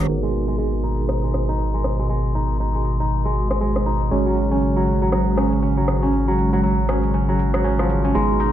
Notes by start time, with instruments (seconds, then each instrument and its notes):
Already playing: kora F#3 A#3 C#4
0.08 analog synth bass G#1, analog synth pad B2 G#3 F#4 A#4, tine electric piano B3 D#4 F#4 G#4 A#4, closed hi-hat
0.23 kora G#3
0.33 open hi-hat
0.48 kora G#3, closed hi-hat
0.58 kora G#3, closed hi-hat
0.83 kora D#4, open hi-hat
0.98 closed hi-hat
1.09 kora D#4, cross-stick, closed hi-hat
1.24 kora G#3
1.34 cross-stick, open hi-hat
1.49 kora D#4, closed hi-hat
1.59 closed hi-hat
1.74 kora G#3
1.84 cross-stick, open hi-hat
1.99 kora G#3, closed hi-hat
2.09 kora G#3, closed hi-hat
2.35 kora D#4, open hi-hat
2.50 closed hi-hat
2.60 kora D#4, closed hi-hat
2.75 kora G#3
2.85 open hi-hat
3.00 kora D#4, closed hi-hat
3.10 closed hi-hat
3.25 kora G#3
3.36 open hi-hat
3.50 kora G#3, cross-stick, closed hi-hat
3.61 kora G#3, closed hi-hat
3.76 cross-stick
3.86 kora D#4, open hi-hat
4.01 closed hi-hat
4.11 analog synth bass G#1, analog synth pad C#3 F#3, tine electric piano G#3 C#4 F#4 G#4 C#5, kora C#4, closed hi-hat
4.26 kora F#3
4.37 open hi-hat
4.51 kora C#4, closed hi-hat
4.62 closed hi-hat
4.76 kora F#3
4.87 open hi-hat
5.02 kora F#3, closed hi-hat
5.12 kora F#3, cross-stick, closed hi-hat
5.37 kora C#4, cross-stick, open hi-hat
5.52 closed hi-hat
5.62 kora C#4, closed hi-hat
5.77 kora F#3
5.88 cross-stick, open hi-hat
6.03 kora C#4, closed hi-hat
6.13 closed hi-hat
6.28 kora F#3
6.38 open hi-hat
6.53 kora F#3, closed hi-hat
6.63 kora F#3, closed hi-hat
6.89 kora C#4, cross-stick, open hi-hat
7.04 closed hi-hat
7.14 kora C#4, closed hi-hat
7.29 kora F#3
7.39 open hi-hat
7.54 kora F#3, cross-stick, closed hi-hat
7.64 kora C#4, closed hi-hat
7.79 kora F3, cross-stick
7.90 open hi-hat
8.04 kora C#4, closed hi-hat
8.14 analog synth bass G#1, analog synth pad B2 F#4 A#5, kora G#3, tine electric piano B3 D#4 F#4 G#4 A#5, closed hi-hat, shaker
8.30 shaker
8.39 kora D#4, open hi-hat, shaker